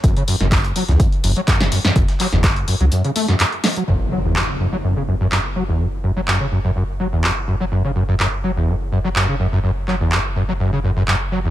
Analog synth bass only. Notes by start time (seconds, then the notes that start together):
0.04 F#1
0.40 F#1
0.88 C#2
1.24 F#1
1.60 F#1
1.96 F#1
2.32 F#1
2.80 C#2
3.88 F#1